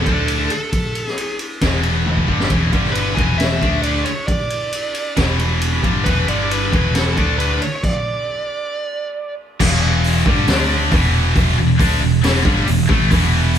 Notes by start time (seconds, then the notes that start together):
Already playing: A4
0.05 D2 D3 A3 D4, kick, ride
0.28 ride
0.50 A4, ride
0.73 kick, ride
0.95 ride
1.07 G#4, snare
1.18 ride
1.39 ride
1.61 E1 E2 B2 E3, kick, snare, ride
1.83 ride
2.06 high tom
2.17 kick
2.28 G1 G2 D3 G3, kick
2.40 snare
2.50 E1 E2 B2 E3, kick, ride
2.72 G1 G2 D3 G3, kick, ride
2.85 snare
2.92 B4, ride
3.15 E1 E2 B2 E3 G#5, kick, ride
3.38 E5, snare, ride
3.62 D2 D3 A3 D4, kick, ride
3.82 D5, ride
4.05 C#5, ride
4.27 D5, kick, ride
4.50 ride
4.73 ride
4.95 ride
5.17 E1 E2 B2 E3, kick, snare, ride
5.39 ride
5.62 ride
5.82 G1 G2 D3 G3, kick, ride
6.04 E1 E2 B2 E3 B4, kick, ride
6.28 G1 G2 D3 G3 D5, ride
6.51 B4, ride
6.72 E1 E2 B2 E3, kick, ride
6.95 A4, snare, ride
7.17 D2 D3 A3 D4, kick, ride
7.39 B4, ride
7.62 C#5, ride
7.76 C#5
7.84 D5, kick, crash
9.60 E1 E2 B2 E3, kick, crash
10.04 open hi-hat
10.26 G1 G2 D3 G3, kick
10.47 D2 D3 A3 D4, snare, open hi-hat
10.91 E1 E2 B2 E3, kick, open hi-hat
11.36 kick, open hi-hat
11.58 E1 E2 B2
11.79 D2 D3 A3 D4, kick, open hi-hat
12.01 E1 E2 B2
12.24 E1 E2 B2 E3, snare, open hi-hat
12.45 G1 G2 D3 G3, kick
12.67 E1 E2 B2, open hi-hat
12.89 A1 A2 E3 A3, kick
13.11 E1 E2 B2 E3, kick, open hi-hat
13.55 open hi-hat